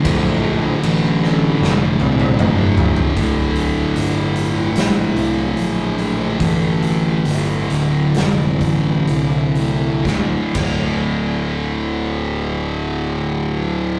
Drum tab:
CC |x---x-----------|----------------|----------------|--x-------------|
HH |----------------|o-o-o-o-o-o-o-o-|o-o-o-o-o-o-o-o-|----------------|
SD |------o-o-------|--------o-------|------o-o-------|o---------------|
T1 |----------oo----|----------------|----------------|----------------|
T2 |------------o---|----------------|----------------|----------------|
FT |--------------oo|----------------|----------------|----------------|
BD |o---------------|o---------------|o---------o-----|o-o-------------|